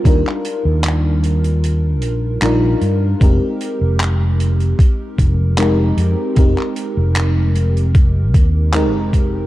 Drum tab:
HH |x-x-x-xxx-x-x-x-|x-x-x-xxx-x-x-x-|x-x-x-xxx-x-x-x-|
CP |-x--x-------x---|----x-------x---|-x--x-------x---|
BD |o---------------|o-------o-o-----|o-------o-o---o-|